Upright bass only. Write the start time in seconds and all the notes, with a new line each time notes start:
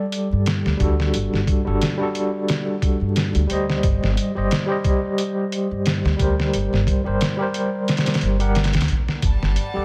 0.32 G2
0.66 D2
0.81 D2
1.15 G1
1.33 G1
1.67 G1
3.01 G2
3.35 D2
3.51 D2
3.84 G1
4.03 G1
4.37 G1
5.71 G2
6.05 D2
6.20 D2
6.54 G1
6.73 G1
7.06 G1
8.22 G1
8.75 D2
8.90 A#1
9.23 G1
9.43 G1
9.76 D2